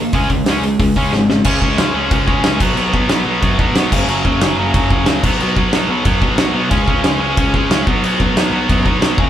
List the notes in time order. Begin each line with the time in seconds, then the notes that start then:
0.00 D#3 A#3
0.13 C#2 C#3 G#3 C#4, kick, open hi-hat
0.29 C#2 C#3 G#3, kick, open hi-hat
0.44 C#2, snare, open hi-hat
0.48 C#3 G#3 C#4
0.61 C#2 C#3 G#3, open hi-hat
0.79 C#2 C#3 G#3, kick, open hi-hat
0.96 C#2 C#3 G#3 C#4, kick, open hi-hat
1.11 G#1 C#3 G#3, snare
1.30 C#3 G#3, snare
1.44 C#2 C#3 G#3 C#4, kick, crash
1.61 C#2 C#3 G#3 C#4, kick
1.77 C#2 C#3 G#3 C#4, snare, crash
1.94 C#2 C#3 G#3 C#4
2.11 C#2 C#3 G#3 C#4, kick, crash
2.28 C#3 G#3 C#4, kick
2.43 C#2 C#3 G#3 C#4, snare, crash
2.60 B1 B2 F#3 B3, kick, crash
2.75 B1 B2 F#3 B3, crash
2.93 B2 F#3 B3, kick
3.09 B1 B2 F#3 B3, snare, crash
3.25 B1 B2 F#3 B3
3.42 F#2 B2 F#3 B3, kick, crash
3.59 B1 B2 F#3 B3, kick
3.72 B1 F#3 B3, snare, crash
3.77 B2
3.91 F#1 F#2 C#3 F#3, kick, crash
4.06 F#1 C#3 F#3, crash
4.10 F#2
4.25 F#1 F#2 C#3 F#3, kick
4.40 F#1 F#2 C#3 F#3, snare, crash
4.56 F#1 F#2 C#3 F#3
4.74 F#1 F#2 C#3 F#3, kick, crash
4.90 F#2 C#3 F#3, kick
5.04 C#2 C#3 F#3, snare, crash
5.09 F#2
5.23 B1 B2 F#3 B3, kick, crash
5.39 B1 B2 F#3 B3, crash
5.57 B2 F#3 B3, kick
5.72 B1 B2 F#3 B3, snare, crash
5.87 B1 B2 F#3 B3
6.04 F#2 B2 F#3 B3, kick, crash
6.21 B1 B2 F#3 B3, kick
6.37 B1 B2 F#3 B3, snare, crash
6.54 B1 B2 F#3 B3
6.70 C#2 C#3 G#3 C#4, kick, crash
6.87 C#2 C#3 G#3 C#4, kick
7.03 C#2 C#3 G#3 C#4, snare, crash
7.19 C#2 C#3 G#3 C#4
7.37 C#2 C#3 G#3 C#4, kick, crash
7.54 C#3 G#3 C#4, kick
7.70 C#2 C#3 G#3 C#4, snare, crash
7.86 B1 B2 F#3 B3, kick
8.01 B1 B2 F#3 B3, crash
8.20 B2 F#3 B3, kick
8.34 B1 B2 F#3 B3, snare, crash
8.50 B1 B2 F#3 B3
8.70 F#2 B2 F#3 B3, kick, crash
8.86 B1 B2 F#3 B3, kick
9.00 B1 B2 F#3 B3, snare, crash
9.17 F#1 F#2 C#3 F#3, kick